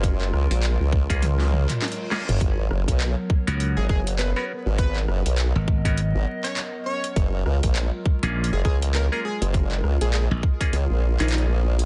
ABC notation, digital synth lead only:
X:1
M:4/4
L:1/16
Q:"Swing 16ths" 1/4=101
K:F#
V:1 name="Digital synth lead"
z16 | z8 z G G z B B z2 | B z8 z2 c z2 c2 | z8 z G G z A A G z |
z3 G G z6 D D z3 |]